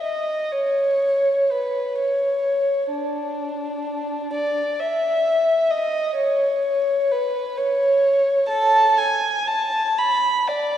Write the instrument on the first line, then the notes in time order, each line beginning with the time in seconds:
violin
0.02 D#5
0.52 C#5
1.51 B4
2.00 C#5
2.92 D4
4.33 D5
4.79 E5
5.70 D#5
6.17 C#5
7.12 B4
7.58 C#5
8.48 A4 A5
8.97 G#5
9.47 A5
9.98 B5
10.47 D5